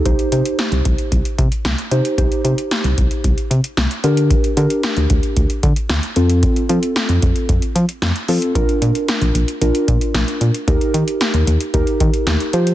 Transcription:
<<
  \new Staff \with { instrumentName = "Synth keys" } { \time 4/4 \key bes \major \tempo 4 = 113 <ees' g' c''>8 <ees' g' c''>4.~ <ees' g' c''>16 r4 r16 <ees' g' c''>8 | <ees' g' c''>8 <ees' g' c''>4.~ <ees' g' c''>16 r4 r16 <d' g' bes'>8~ | <d' g' bes'>8 <d' g' bes'>4.~ <d' g' bes'>16 r4 r16 <c' f' a'>8~ | <c' f' a'>8 <c' f' a'>4.~ <c' f' a'>16 r4 r16 <c' f' a'>8 |
<d' f' bes'>4.~ <d' f' bes'>16 r16 <d' f' bes'>4.~ <d' f' bes'>16 r16 | <ees' g' bes'>4.~ <ees' g' bes'>16 r16 <ees' g' bes'>4. <f' g' c''>8 | }
  \new Staff \with { instrumentName = "FM bass" } { \clef bass \time 4/4 \key bes \major c,16 r16 c16 r8 c,16 c,16 r16 c,16 r16 c16 r16 c,16 r16 c16 r16 | c,16 r16 c16 r8 c,16 c,16 r16 c,16 r16 c16 r16 c,16 r16 d8~ | d16 r16 d16 r8 d,16 d,16 r16 d,16 r16 d16 r16 d,16 r16 f,8~ | f,16 r16 f16 r8 f,16 f,16 r16 f,16 r16 f16 r16 f,16 r16 f16 r16 |
bes,,16 r16 bes,16 r8 bes,,16 bes,,16 r16 bes,,16 r16 bes,16 r16 bes,,16 r16 bes,16 r16 | ees,16 r16 ees16 r8 ees,16 ees,16 r16 ees,16 r16 ees16 r16 ees,16 r16 f8 | }
  \new DrumStaff \with { instrumentName = "Drums" } \drummode { \time 4/4 <hh bd>16 hh16 hh16 hh16 <hh sn>16 hh16 <hh bd>16 hh16 <hh bd>16 hh16 <hh bd>16 hh16 <hh sn>16 hh16 hh16 hh16 | <hh bd>16 hh16 hh16 hh16 <hh sn>16 hh16 <hh bd>16 hh16 <hh bd>16 hh16 hh16 hh16 <hh sn>16 hh16 hh16 hh16 | <hh bd>16 hh16 hh16 hh16 <hh sn>16 hh16 <hh bd>16 hh16 <hh bd>16 hh16 <hh bd>16 hh16 <hh sn>16 hh16 hh16 hh16 | <hh bd>16 hh16 hh16 hh16 <hh sn>16 hh16 <hh bd>16 hh16 <hh bd>16 hh16 hh16 hh16 <hh sn>16 hh16 hho16 hh16 |
<hh bd>16 hh16 hh16 hh16 <hh sn>16 hh16 hh16 hh16 hh16 hh16 <hh bd>16 hh16 <hh sn>16 hh16 hh16 hh16 | <hh bd>16 hh16 hh16 hh16 <hh sn>16 hh16 hh16 hh16 <hh bd>16 hh16 <hh bd>16 hh16 <hh sn>16 hh16 hh16 hh16 | }
>>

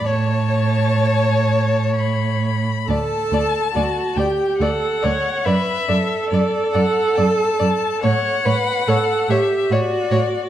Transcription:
<<
  \new Staff \with { instrumentName = "Violin" } { \time 3/4 \key a \major \tempo 4 = 70 a''2 b''4 | \key d \major a''4. g''8 fis''4 | e''4 d''8 fis''8 a''4 | fis''4. e''8 d''4 | }
  \new Staff \with { instrumentName = "Violin" } { \time 3/4 \key a \major cis''2. | \key d \major d''8 d''8 d''8 d''8 d''8 d''8 | d''8 d''8 d''8 d''8 d''8 d''8 | cis''8 cis''8 cis''8 cis''8 cis''8 cis''8 | }
  \new Staff \with { instrumentName = "Viola" } { \time 3/4 \key a \major cis''2~ cis''8 r8 | \key d \major a'4 fis'8 g'8 a'8 cis''8 | b'8 a'2~ a'8 | cis''8 b'8 a'8 g'8 fis'4 | }
  \new Staff \with { instrumentName = "Cello" } { \clef bass \time 3/4 \key a \major a,2. | \key d \major d,8 d,8 d,8 d,8 d,8 d,8 | fis,8 fis,8 fis,8 fis,8 fis,8 fis,8 | a,8 a,8 a,8 a,8 a,8 a,8 | }
>>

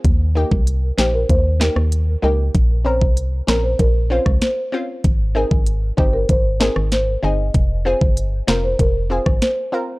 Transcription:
<<
  \new Staff \with { instrumentName = "Marimba" } { \time 4/4 \key f \minor \tempo 4 = 96 r8 bes'16 r8. c''16 bes'16 c''16 r16 bes'16 r8. bes'16 r16 | r8 c''16 r8. bes'16 c''16 bes'16 r16 c''16 r16 c''8. r16 | r8 bes'16 r8. c''16 bes'16 c''16 r16 bes'16 r16 c''16 r16 ees''16 r16 | r8 c''16 r8. bes'16 c''16 bes'16 r16 c''16 r16 c''8. r16 | }
  \new Staff \with { instrumentName = "Synth pluck" } { \time 4/4 \key f \minor r8 <bes ees' g'>8 r8 <bes ees' g'>8 r8 <bes ees' g'>8 r8 <bes ees' g'>8 | r8 <c' des' bes'>8 r8 <c' des' bes'>8 r8 <c' des' f'>8 r8 <c' des' f'>8 | r8 <c' ees' aes'>8 r8 <c' ees' g'>8 r8 <c' ees' aes'>8 r8 <c' ees' aes'>8 | r8 <c' f' aes'>8 r8 <c' f' bes'>8 r8 <c' f' aes'>8 r8 <c' f' bes'>8 | }
  \new Staff \with { instrumentName = "FM bass" } { \clef bass \time 4/4 \key f \minor ees,8. c,8. bes,,8 ees,8. ees,8. des,8 | bes,,8. c,8. bes,,8 bes,,8. des,16 r4 | aes,,8. aes,,8. g,,8 aes,,8. aes,,8. g,,8 | f,,8. g,,8. f,,8 f,,8. aes,,16 r4 | }
  \new DrumStaff \with { instrumentName = "Drums" } \drummode { \time 4/4 <hh bd>8. bd16 hh8 sn8 <hh bd>8 sn16 ss16 hh4 | <hh bd>8. bd16 hh8 sn8 <hh bd>8. <bd ss>16 <hh sn>4 | <hh bd>8. bd16 hh8 bd8 <hh bd>8 sn16 ss16 <hh sn>4 | <hh bd>8. bd16 hh8 sn8 <hh bd>8. <bd ss>16 <hh sn>4 | }
>>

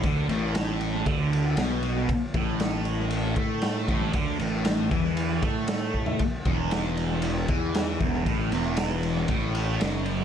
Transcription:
<<
  \new Staff \with { instrumentName = "Distorted electric guitar" } { \clef bass \time 4/4 \key e \dorian \tempo 4 = 117 d8 a,4. d4 b,4 | r8 a,2 a4 a,8 | d8 a,4 e4 a4. | r8 e,2 e4 e,8 |
a,8 e,4. a,4 fis,4 | }
  \new Staff \with { instrumentName = "Fingered electric bass" } { \clef bass \time 4/4 \key e \dorian d,8 a,,4. d,4 b,,4 | r8 a,,2 a,4 a,,8 | d,8 a,,4 e,4 a,4. | r8 e,,2 e,4 e,,8 |
a,,8 e,,4. a,,4 fis,,4 | }
  \new DrumStaff \with { instrumentName = "Drums" } \drummode { \time 4/4 <bd cymr>8 cymr8 <cymr sn>8 cymr8 <bd cymr>8 cymr8 <cymr sn>8 cymr8 | <bd cymr>8 <bd cymr>8 <cymr sn>8 cymr8 cymr8 <bd cymr>8 <cymr sn>8 <bd cymr>8 | <bd cymr>8 cymr8 <cymr sn>8 <bd cymr>8 cymr8 <bd cymr>8 <cymr sn>8 bd16 tomfh16 | <bd cymr>8 <bd cymr>8 <cymr sn>8 cymr8 cymr8 <bd cymr>8 <cymr sn>8 <bd cymr>8 |
<bd cymr>8 cymr8 <cymr sn>8 cymr8 <bd cymr>8 cymr8 <cymr sn>8 cymr8 | }
>>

